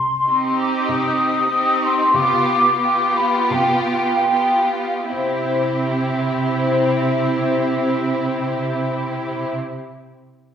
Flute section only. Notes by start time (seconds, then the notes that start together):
Already playing: C6
0.59 D6
0.91 D#6
1.84 C6
2.17 D6
3.17 B5
3.53 G5
4.73 F5
5.13 C5